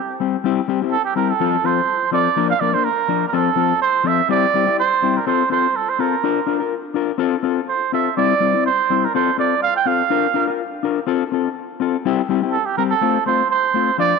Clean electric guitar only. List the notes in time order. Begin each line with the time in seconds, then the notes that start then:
0.20 G3 C4 G4
0.44 G3 C4 E4 G4
0.68 G3 C4 G4, muted clean electric guitar stroke
0.82 C4 E4 G4
1.16 G3 C4 E4 G4
1.40 F3 C4 F4 A4
1.64 F3 C4 F4 A4
2.11 F3 C4 F4 A4
2.36 F3 A#3 D4 A#4
2.61 F3 A#3 D4 A#4
2.73 A#3 D4 A#4
3.08 F3 D4 A#4, muted clean electric guitar stroke
3.33 F3 C4 F4 A4
3.56 F3 C4 F4 A4
4.04 F3 C4 F4 A4
4.29 G3 C4 E4 G4
4.54 G3 C4 E4 G4
4.66 E4 G4, muted clean electric guitar stroke
5.02 G3 C4 E4 G4
5.27 C4 F4 A4
5.50 C4 F4 A4
5.99 C4 F4 A4
6.24 D4 F4 A#4
6.47 D4 F4 A#4
6.60 F4 A#4
6.94 D4 F4 A#4
7.18 C4 F4 A4
7.43 C4 F4 A4
7.92 C4 F4 A4
8.17 G3 C4 E4
8.40 G3 C4 E4
8.54 C4 E4
8.90 G3 C4 E4
9.15 C4 F4 A4
9.38 C4 F4 A4
9.86 C4 F4 A4
10.10 D4 F4 A#4
10.34 D4 F4 A#4
10.48 F4 A#4
10.83 D4 F4 A#4
11.07 C4 F4 A4
11.32 C4 F4 A4
11.80 C4 F4 A4
12.05 G3 C4 E4 G4
12.29 G3 C4 E4 G4
12.43 C4 E4 G4
12.78 G3 C4 G4
13.01 A3 C4 F4
13.26 A3 C4 F4
13.74 A3 C4 F4
13.98 F3 D4 F4, muted clean electric guitar stroke